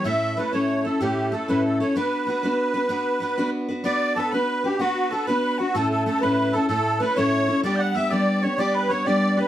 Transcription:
X:1
M:12/8
L:1/16
Q:3/8=126
K:Bm
V:1 name="Tin whistle"
z24 | z24 | d'4 a2 b4 g2 f4 a2 b4 f2 | a2 a2 a2 b4 a2 a4 b2 c'6 |
d'3/2 g'/2 f'2 e'2 d'4 c'2 d'2 b2 c'2 d'4 b2 |]
V:2 name="Accordion"
e4 B2 c4 A2 G4 A2 B2 A2 c2 | B16- B4 z4 | d4 A2 B4 G2 F4 A2 B4 F2 | A2 A2 A2 B4 A2 A4 B2 c6 |
d2 f2 e2 d4 c2 d2 B2 c2 d4 B2 |]
V:3 name="Steel-string acoustic guitar"
[A,,A,CEA]4 [A,CEA]2 [A,,A,CEA]4 [CEA]2 [A,,A,CEA]4 [A,CEA]2 [A,,A,CEA]4 [CEA]2 | [B,DFB]4 [B,DFB]2 [B,DFB]4 [DFB]2 [B,DFB]4 [B,DFB]2 [B,DFB]4 [DFB]2 | [B,DFB]4 [B,DFB]2 [B,DFB]4 [DFB]2 [B,DFB]4 [B,DFB]2 [B,DFB]4 [DFB]2 | [A,,A,CEA]4 [A,CEA]2 [A,,A,CEA]4 [CEA]2 [A,,A,CEA]4 [A,CEA]2 [A,,A,CEA]4 [CEA]2 |
[G,B,DG]4 [G,B,DG]2 [G,B,DG]4 [B,DG]2 [G,B,DG]4 [G,B,DG]2 [G,B,DG]4 [B,DG]2 |]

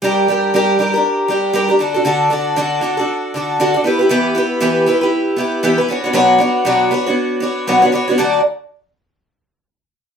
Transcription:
X:1
M:4/4
L:1/16
Q:"Swing 16ths" 1/4=118
K:D
V:1 name="Twelve-string acoustic guitar"
[G,DG_B]2 [G,DGB]2 [G,DGB]2 [G,DGB] [DGB]3 [G,DGB]2 [G,DGB] [DGB] [D,DFA] [DFA] | [D,DFA]2 [D,DFA]2 [D,DFA]2 [D,DFA] [DFA]3 [D,DFA]2 [D,DFA] [DFA] [B,EGB] [EGB] | [E,B,EGB]2 [B,EGB]2 [E,B,EGB]2 [B,EGB] [EGB]3 [B,EGB]2 [E,B,EGB] [EGB] [B,DFc] [B,DFc] | [B,,F,B,DFc]2 [B,DFc]2 [B,,F,B,DFc]2 [B,DFc] [B,DFc]3 [B,DFc]2 [B,,F,B,DFc] [B,DFc] [B,DFc] [B,DFc] |
[D,F,A,DFd]2 z12 z2 |]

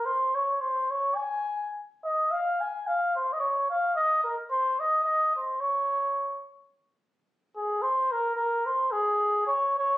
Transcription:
X:1
M:2/4
L:1/16
Q:"Swing" 1/4=108
K:Db
V:1 name="Muted trumpet"
c2 d2 c2 d2 | a4 z2 e2 | f2 a2 f2 c3/2 e/2 | d2 f2 e2 B2 |
c2 e2 e2 c2 | d6 z2 | z6 A2 | c2 B2 B2 c2 |
A4 d2 d2 |]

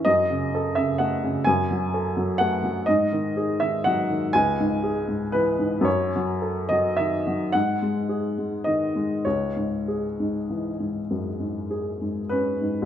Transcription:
X:1
M:12/8
L:1/16
Q:3/8=37
K:C#m
V:1 name="Upright piano"
d3 e f2 g4 f2 d3 e f2 g4 B2 | c3 d e2 f4 d2 c6 z4 B2 |]
V:2 name="Upright piano" clef=bass
F,, C, A C, A, C, F,, F, A F, A, F, G,, D, G D, F, D, C,, G,, G G,, E, G,, | F,, F, A F, D, F, G,, G, G G, D, G, C,, G,, G G,, E, G,, F,, G,, G G,, C G,, |]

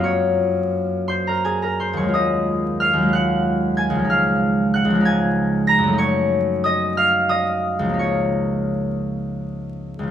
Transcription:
X:1
M:6/8
L:1/16
Q:3/8=60
K:Db
V:1 name="Harp"
[dfd'f']6 [cc'] [Bb] [Aa] [Bb] [cc'] [dd'] | [ee']4 [ff']2 [gg']4 [aa']2 | [ff']4 [gg']2 [aa']4 [bb']2 | [dd']4 [ee']2 [ff']2 [ee']4 |
[dd']12 |]
V:2 name="Harp" clef=bass
[G,,G,B,F]12 | [E,,G,A,F]6 [E,,G,A,F]6 | [D,,F,A,E]6 [D,,F,A,E]6 | [G,,G,=A,E]12 |
[D,,F,B,E]12 |]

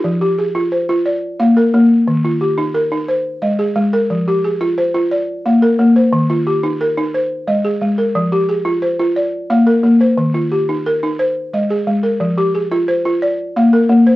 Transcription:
X:1
M:12/8
L:1/16
Q:3/8=118
K:Fdor
V:1 name="Balafon"
E z G2 A4 c4 d4 f2 B6 | z2 F2 G4 B4 c4 e2 A4 B2- | B2 G2 A4 c4 d4 f2 B4 c2- | c2 F2 G4 B4 c4 e2 A4 B2- |
B2 G2 A4 c4 d4 f2 B4 c2- | c2 F2 G4 B4 c4 e2 A4 B2- | B2 G2 A4 c4 d4 f2 B4 c2 |]
V:2 name="Balafon"
F,4 z2 F4 F2 z4 B,4 B,4 | E,4 z2 E4 E2 z4 A,4 A,4 | F,4 z2 F4 F2 z4 B,4 B,4 | E,4 z2 E4 E2 z4 A,4 A,4 |
F,4 z2 F4 F2 z4 B,4 B,4 | E,4 z2 E4 E2 z4 A,4 A,4 | F,4 z2 F4 F2 z4 B,4 B,4 |]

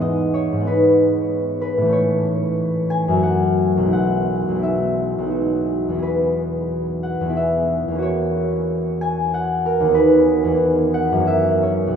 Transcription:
X:1
M:3/4
L:1/8
Q:1/4=90
K:E
V:1 name="Harp"
[Bd] c B3 B | c3 g f2 | f2 e2 z2 | [K:Elyd] B3 f e2 |
c3 g f A | B3 f e c |]
V:2 name="Harp"
[G,,G,B,D]2 [G,,G,B,D]4 | [A,,E,A,C]4 [F,,F,A,C]2 | [B,,,G,B,E]2 [B,,,G,B,E]2 [B,,,B,DF]2 | [K:Elyd] [E,,B,EG]4 [E,,B,EG]2 |
[E,,A,CF]6 | [D,,B,DF]2 [E,,B,DG]2 [F,,A,CF]2 |]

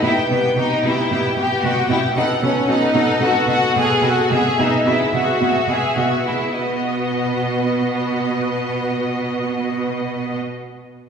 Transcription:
X:1
M:4/4
L:1/8
Q:1/4=109
K:B
V:1 name="Violin section"
=g g g g g g g g | f f f f f f f f | e e e e e e e e | d8- |
d8 |]
V:2 name="Violin section"
E B, D E2 =G F E | D C D2 F F G F | G D E F2 G F E | B,8- |
B,8 |]
V:3 name="Viola section"
[B,=G] [B,G] [B,G] [B,G] [B,G] [B,G] [B,G] [B,G] | [B,=A] [B,A] [B,A] [B,A] [B,A] [B,A] [B,A] [B,A] | [B,G] [B,G] [B,G] [B,G] [B,G] [B,G] [B,G] [B,G] | [B,F]8- |
[B,F]8 |]
V:4 name="Cello section" clef=bass
B,, B,, B,, B,, B,, B,, B,, B,, | B,, B,, B,, B,, B,, B,, B,, B,, | B,, B,, B,, B,, B,, B,, B,, B,, | B,,8- |
B,,8 |]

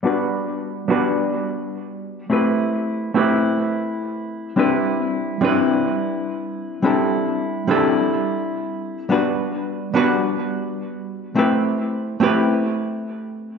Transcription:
X:1
M:4/4
L:1/8
Q:"Swing 16ths" 1/4=106
K:G
V:1 name="Hollow-body jazz guitar"
[G,B,DFB]3 [G,B,DFB]4- [G,B,DFB] | [A,CEGB]3 [A,CEGB]4- [A,CEGB] | [G,CDEB]3 [G,CDEB]4- [G,CDEB] | [G,CDEA]3 [G,CDEA]4- [G,CDEA] |
[G,B,DFB]3 [G,B,DFB]4- [G,B,DFB] | [A,CEGB]3 [A,CEGB]4- [A,CEGB] |]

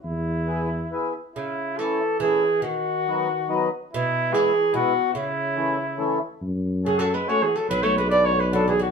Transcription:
X:1
M:3/4
L:1/8
Q:1/4=142
K:E
V:1 name="Flugelhorn"
E4- E z | [K:A] E2 A2 G2 | F4- F z | E2 G2 F2 |
E4- E z | z2 (3G A B (3c G A | (3B c B (3d c B (3A G F |]
V:2 name="Accordion"
z2 [B,EG] z [B,EG] z | [K:A] z2 [A,CE] z [A,CE] z | z2 [F,B,^D] z [F,B,D] z | z2 [G,B,E] z [G,B,E] z |
z2 [E,A,CE] z [E,A,CE] z | z2 [A,CF] z [A,CF] z | z2 [B,DF] z [B,DF] z |]
V:3 name="Oud" clef=bass
z6 | [K:A] C,2 E,2 E,2 | ^D,4- D, z | B,,2 E,2 B,,2 |
C,4- C, z | z2 (3C, F, G, (3A, E, F, | (3F, A, G, (3B, A, G, (3F, E, D, |]
V:4 name="Tuba" clef=bass
E,,6 | [K:A] z6 | z6 | z6 |
z6 | F,,6 | B,,,6 |]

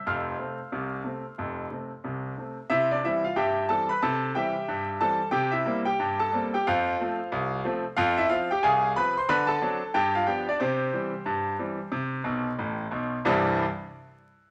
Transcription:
X:1
M:2/4
L:1/16
Q:"Swing 16ths" 1/4=91
K:F
V:1 name="Grand piano"
[fc'f']8- | [fc'f']6 z2 | [K:C] [Ee] [Dd] [Ee] [Ff] [Geg]2 [Aa] [Bb] | [Aa]2 [Geg]4 [Aa]2 |
[Gg] [Ee]2 [Gg]2 [Aa]2 [Gg] | [Fcf]6 z2 | [Ff] [Ee] [Ff] [Gg] [_Af_a]2 [Bb] [cc'] | [Bb] [Aa]3 [Gg] [Ff] [Gg] [Dd] |
[CGc]8- | [CGc]6 z2 | [C,,G,,E,G,CE]2 z6 |]
V:2 name="Grand piano" clef=bass
[F,,,F,,]2 [C,A,C]2 [C,,C,]2 [C,A,C]2 | [F,,,F,,]2 [C,A,C]2 [C,,C,]2 [C,A,C]2 | [K:C] C,2 [E,G,C]2 G,,2 [E,G,C]2 | C,2 [E,G,C]2 G,,2 [E,G,C]2 |
C,2 [G,_B,C]2 G,,2 [G,B,C]2 | F,,2 [F,A,C]2 C,,2 [F,A,C]2 | F,,2 [F,C]2 C,,2 [F,C]2 | D,2 [^F,CD]2 G,,2 [=F,B,D]2 |
C,2 [E,G,C]2 G,,2 [E,G,C]2 | C,2 [B,,,B,,]2 [A,,,A,,]2 [B,,,B,,]2 | z8 |]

